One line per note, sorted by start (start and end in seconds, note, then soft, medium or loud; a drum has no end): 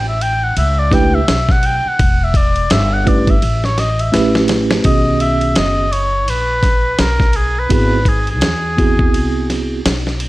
0.00 0.53 A1 loud
0.08 0.23 E5 medium
0.21 0.45 G5 loud
0.21 ride medium
0.44 0.57 F#5 medium
0.57 1.24 C#2 loud
0.57 0.80 E5 medium
0.57 ride medium
0.79 0.95 D5 medium
0.91 1.19 A3 medium
0.91 1.19 D4 medium
0.91 1.19 E4 medium
0.91 1.19 G4 medium
0.91 1.20 B4 medium
0.91 1.16 G5 loud
0.91 kick medium
0.91 snare soft
0.91 ride medium
1.15 1.53 E5 medium
1.28 1.82 B1 medium
1.28 snare loud
1.28 hi-hat pedal medium
1.28 ride medium
1.49 1.67 F#5 loud
1.49 kick medium
1.49 snare soft
1.63 1.90 G5 loud
1.63 ride medium
1.86 2.25 F#5 medium
1.86 muted upright bass stroke soft
1.99 2.67 E1 loud
1.99 kick loud
1.99 ride medium
2.23 2.38 E5 medium
2.34 2.73 D5 medium
2.34 kick medium
2.34 ride medium
2.56 ride soft
2.70 3.39 G1 loud
2.70 2.95 E5 loud
2.70 snare loud
2.70 hi-hat pedal medium
2.70 ride medium
2.93 3.09 F#5 medium
3.05 3.33 A3 medium
3.05 3.33 C#4 medium
3.05 3.34 E4 medium
3.05 3.34 G4 medium
3.05 3.34 B4 medium
3.05 3.32 D5 medium
3.05 kick medium
3.05 ride medium
3.27 3.66 E5 medium
3.27 kick medium
3.27 ride soft
3.42 4.10 A1 loud
3.42 ride medium
3.64 3.81 C#5 medium
3.64 snare soft
3.78 4.02 D#5 medium
3.78 snare soft
3.78 ride medium
3.99 4.36 E5 medium
3.99 ride soft
4.12 4.82 A1 medium
4.12 4.84 A3 medium
4.12 4.83 C#4 medium
4.12 4.85 E4 medium
4.12 4.85 G4 medium
4.12 4.85 B4 medium
4.12 snare medium
4.12 hi-hat pedal medium
4.12 ride medium
4.35 snare medium
4.48 snare medium
4.48 ride medium
4.71 snare medium
4.71 ride medium
4.84 5.53 B1 medium
4.84 5.86 D#3 soft
4.84 5.86 B3 medium
4.84 5.86 C#4 soft
4.84 5.87 F#4 medium
4.84 5.87 G#4 medium
4.84 5.18 D#5 loud
4.84 kick loud
4.84 ride medium
5.20 5.59 E5 loud
5.20 ride medium
5.41 ride soft
5.55 6.28 F#1 medium
5.55 5.94 D#5 loud
5.55 snare loud
5.55 hi-hat pedal medium
5.55 ride medium
5.93 6.31 C#5 medium
5.93 ride medium
6.28 6.96 A#1 medium
6.28 7.02 B4 medium
6.28 ride medium
6.63 kick medium
6.63 snare soft
6.63 ride medium
6.99 7.67 B1 medium
6.99 7.38 A#4 medium
6.99 snare loud
6.99 hi-hat pedal soft
6.99 ride medium
7.20 kick medium
7.20 snare soft
7.33 7.61 G#4 medium
7.33 ride medium
7.59 7.72 B4 medium
7.69 8.43 G#1 loud
7.69 7.97 B3 medium
7.69 7.97 C4 medium
7.69 7.98 E4 medium
7.69 7.98 F#4 medium
7.69 7.98 G#4 medium
7.69 8.10 B4 medium
7.69 kick loud
7.69 ride medium
8.05 8.29 G#4 medium
8.05 kick medium
8.05 ride medium
8.27 9.68 G#4 medium
8.27 ride soft
8.41 9.14 E2 medium
8.41 snare loud
8.41 hi-hat pedal medium
8.41 ride medium
8.77 9.79 B3 medium
8.77 9.79 C4 medium
8.77 9.80 E4 medium
8.77 9.80 F#4 medium
8.77 9.80 G#4 medium
8.77 kick medium
8.77 ride medium
8.99 kick medium
9.14 9.82 C2 medium
9.14 ride medium
9.50 snare soft
9.50 ride medium
9.86 10.29 B1 medium
9.86 snare loud
9.86 hi-hat pedal medium
9.86 ride medium
10.07 snare soft
10.20 ride medium